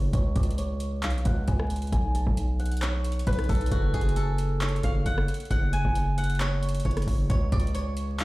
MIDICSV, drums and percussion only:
0, 0, Header, 1, 2, 480
1, 0, Start_track
1, 0, Key_signature, 3, "minor"
1, 0, Tempo, 447761
1, 143, Time_signature, 4, 2, 24, 8
1, 8835, End_track
2, 0, Start_track
2, 0, Title_t, "Drums"
2, 143, Note_on_c, 9, 36, 122
2, 143, Note_on_c, 9, 42, 86
2, 250, Note_off_c, 9, 36, 0
2, 250, Note_off_c, 9, 42, 0
2, 382, Note_on_c, 9, 36, 95
2, 382, Note_on_c, 9, 42, 67
2, 462, Note_off_c, 9, 42, 0
2, 462, Note_on_c, 9, 42, 65
2, 490, Note_off_c, 9, 36, 0
2, 543, Note_off_c, 9, 42, 0
2, 543, Note_on_c, 9, 42, 63
2, 623, Note_off_c, 9, 42, 0
2, 623, Note_on_c, 9, 42, 82
2, 730, Note_off_c, 9, 42, 0
2, 859, Note_on_c, 9, 42, 79
2, 966, Note_off_c, 9, 42, 0
2, 1102, Note_on_c, 9, 42, 72
2, 1103, Note_on_c, 9, 39, 116
2, 1183, Note_off_c, 9, 42, 0
2, 1183, Note_on_c, 9, 42, 57
2, 1210, Note_off_c, 9, 39, 0
2, 1263, Note_off_c, 9, 42, 0
2, 1263, Note_on_c, 9, 42, 44
2, 1341, Note_off_c, 9, 42, 0
2, 1341, Note_on_c, 9, 42, 83
2, 1344, Note_on_c, 9, 36, 96
2, 1449, Note_off_c, 9, 42, 0
2, 1451, Note_off_c, 9, 36, 0
2, 1582, Note_on_c, 9, 42, 66
2, 1584, Note_on_c, 9, 36, 83
2, 1689, Note_off_c, 9, 42, 0
2, 1691, Note_off_c, 9, 36, 0
2, 1710, Note_on_c, 9, 37, 90
2, 1817, Note_off_c, 9, 37, 0
2, 1823, Note_on_c, 9, 42, 66
2, 1887, Note_off_c, 9, 42, 0
2, 1887, Note_on_c, 9, 42, 57
2, 1950, Note_off_c, 9, 42, 0
2, 1950, Note_on_c, 9, 42, 49
2, 2007, Note_off_c, 9, 42, 0
2, 2007, Note_on_c, 9, 42, 39
2, 2063, Note_on_c, 9, 36, 125
2, 2064, Note_off_c, 9, 42, 0
2, 2064, Note_on_c, 9, 42, 86
2, 2170, Note_off_c, 9, 36, 0
2, 2171, Note_off_c, 9, 42, 0
2, 2303, Note_on_c, 9, 42, 76
2, 2411, Note_off_c, 9, 42, 0
2, 2430, Note_on_c, 9, 36, 100
2, 2537, Note_off_c, 9, 36, 0
2, 2543, Note_on_c, 9, 42, 86
2, 2650, Note_off_c, 9, 42, 0
2, 2783, Note_on_c, 9, 42, 46
2, 2847, Note_off_c, 9, 42, 0
2, 2847, Note_on_c, 9, 42, 55
2, 2910, Note_off_c, 9, 42, 0
2, 2910, Note_on_c, 9, 42, 63
2, 2967, Note_off_c, 9, 42, 0
2, 2967, Note_on_c, 9, 42, 73
2, 3024, Note_on_c, 9, 39, 118
2, 3026, Note_off_c, 9, 42, 0
2, 3026, Note_on_c, 9, 42, 78
2, 3131, Note_off_c, 9, 39, 0
2, 3133, Note_off_c, 9, 42, 0
2, 3263, Note_on_c, 9, 42, 67
2, 3343, Note_off_c, 9, 42, 0
2, 3343, Note_on_c, 9, 42, 64
2, 3423, Note_off_c, 9, 42, 0
2, 3423, Note_on_c, 9, 42, 66
2, 3503, Note_off_c, 9, 42, 0
2, 3503, Note_on_c, 9, 42, 69
2, 3504, Note_on_c, 9, 36, 82
2, 3566, Note_off_c, 9, 42, 0
2, 3566, Note_on_c, 9, 42, 58
2, 3611, Note_off_c, 9, 36, 0
2, 3630, Note_off_c, 9, 42, 0
2, 3630, Note_on_c, 9, 37, 90
2, 3630, Note_on_c, 9, 42, 51
2, 3687, Note_off_c, 9, 42, 0
2, 3687, Note_on_c, 9, 42, 41
2, 3737, Note_off_c, 9, 37, 0
2, 3742, Note_off_c, 9, 42, 0
2, 3742, Note_on_c, 9, 36, 98
2, 3742, Note_on_c, 9, 42, 41
2, 3746, Note_on_c, 9, 46, 70
2, 3806, Note_off_c, 9, 42, 0
2, 3806, Note_on_c, 9, 42, 50
2, 3850, Note_off_c, 9, 36, 0
2, 3853, Note_off_c, 9, 46, 0
2, 3870, Note_off_c, 9, 42, 0
2, 3870, Note_on_c, 9, 42, 58
2, 3926, Note_off_c, 9, 42, 0
2, 3926, Note_on_c, 9, 42, 70
2, 3983, Note_off_c, 9, 42, 0
2, 3983, Note_on_c, 9, 36, 119
2, 3983, Note_on_c, 9, 42, 83
2, 4090, Note_off_c, 9, 36, 0
2, 4090, Note_off_c, 9, 42, 0
2, 4223, Note_on_c, 9, 36, 96
2, 4223, Note_on_c, 9, 42, 65
2, 4303, Note_off_c, 9, 42, 0
2, 4303, Note_on_c, 9, 42, 63
2, 4330, Note_off_c, 9, 36, 0
2, 4383, Note_off_c, 9, 42, 0
2, 4383, Note_on_c, 9, 42, 63
2, 4463, Note_off_c, 9, 42, 0
2, 4463, Note_on_c, 9, 42, 79
2, 4570, Note_off_c, 9, 42, 0
2, 4699, Note_on_c, 9, 42, 81
2, 4807, Note_off_c, 9, 42, 0
2, 4943, Note_on_c, 9, 39, 116
2, 4943, Note_on_c, 9, 42, 72
2, 5023, Note_off_c, 9, 42, 0
2, 5023, Note_on_c, 9, 42, 61
2, 5051, Note_off_c, 9, 39, 0
2, 5103, Note_off_c, 9, 42, 0
2, 5103, Note_on_c, 9, 42, 45
2, 5181, Note_off_c, 9, 42, 0
2, 5181, Note_on_c, 9, 42, 85
2, 5184, Note_on_c, 9, 36, 96
2, 5288, Note_off_c, 9, 42, 0
2, 5291, Note_off_c, 9, 36, 0
2, 5421, Note_on_c, 9, 42, 68
2, 5424, Note_on_c, 9, 36, 83
2, 5529, Note_off_c, 9, 42, 0
2, 5531, Note_off_c, 9, 36, 0
2, 5550, Note_on_c, 9, 37, 93
2, 5657, Note_off_c, 9, 37, 0
2, 5663, Note_on_c, 9, 42, 66
2, 5726, Note_off_c, 9, 42, 0
2, 5726, Note_on_c, 9, 42, 59
2, 5790, Note_off_c, 9, 42, 0
2, 5790, Note_on_c, 9, 42, 49
2, 5846, Note_off_c, 9, 42, 0
2, 5846, Note_on_c, 9, 42, 39
2, 5903, Note_off_c, 9, 42, 0
2, 5903, Note_on_c, 9, 36, 118
2, 5903, Note_on_c, 9, 42, 86
2, 6010, Note_off_c, 9, 36, 0
2, 6010, Note_off_c, 9, 42, 0
2, 6143, Note_on_c, 9, 42, 76
2, 6250, Note_off_c, 9, 42, 0
2, 6269, Note_on_c, 9, 36, 101
2, 6377, Note_off_c, 9, 36, 0
2, 6383, Note_on_c, 9, 42, 87
2, 6490, Note_off_c, 9, 42, 0
2, 6623, Note_on_c, 9, 42, 78
2, 6686, Note_off_c, 9, 42, 0
2, 6686, Note_on_c, 9, 42, 63
2, 6750, Note_off_c, 9, 42, 0
2, 6750, Note_on_c, 9, 42, 50
2, 6806, Note_off_c, 9, 42, 0
2, 6806, Note_on_c, 9, 42, 42
2, 6863, Note_on_c, 9, 39, 118
2, 6865, Note_off_c, 9, 42, 0
2, 6865, Note_on_c, 9, 42, 75
2, 6970, Note_off_c, 9, 39, 0
2, 6972, Note_off_c, 9, 42, 0
2, 7103, Note_on_c, 9, 42, 64
2, 7167, Note_off_c, 9, 42, 0
2, 7167, Note_on_c, 9, 42, 65
2, 7230, Note_off_c, 9, 42, 0
2, 7230, Note_on_c, 9, 42, 63
2, 7286, Note_off_c, 9, 42, 0
2, 7286, Note_on_c, 9, 42, 65
2, 7343, Note_off_c, 9, 42, 0
2, 7343, Note_on_c, 9, 42, 43
2, 7344, Note_on_c, 9, 36, 80
2, 7407, Note_off_c, 9, 42, 0
2, 7407, Note_on_c, 9, 42, 50
2, 7451, Note_off_c, 9, 36, 0
2, 7470, Note_off_c, 9, 42, 0
2, 7470, Note_on_c, 9, 37, 91
2, 7470, Note_on_c, 9, 42, 61
2, 7526, Note_off_c, 9, 42, 0
2, 7526, Note_on_c, 9, 42, 70
2, 7577, Note_off_c, 9, 37, 0
2, 7583, Note_on_c, 9, 36, 96
2, 7586, Note_on_c, 9, 46, 73
2, 7633, Note_off_c, 9, 42, 0
2, 7690, Note_off_c, 9, 36, 0
2, 7694, Note_off_c, 9, 46, 0
2, 7823, Note_on_c, 9, 36, 119
2, 7824, Note_on_c, 9, 42, 85
2, 7930, Note_off_c, 9, 36, 0
2, 7931, Note_off_c, 9, 42, 0
2, 8063, Note_on_c, 9, 36, 93
2, 8063, Note_on_c, 9, 42, 65
2, 8143, Note_off_c, 9, 42, 0
2, 8143, Note_on_c, 9, 42, 65
2, 8170, Note_off_c, 9, 36, 0
2, 8223, Note_off_c, 9, 42, 0
2, 8223, Note_on_c, 9, 42, 62
2, 8304, Note_off_c, 9, 42, 0
2, 8304, Note_on_c, 9, 42, 80
2, 8411, Note_off_c, 9, 42, 0
2, 8540, Note_on_c, 9, 42, 80
2, 8648, Note_off_c, 9, 42, 0
2, 8784, Note_on_c, 9, 39, 112
2, 8784, Note_on_c, 9, 42, 75
2, 8835, Note_off_c, 9, 39, 0
2, 8835, Note_off_c, 9, 42, 0
2, 8835, End_track
0, 0, End_of_file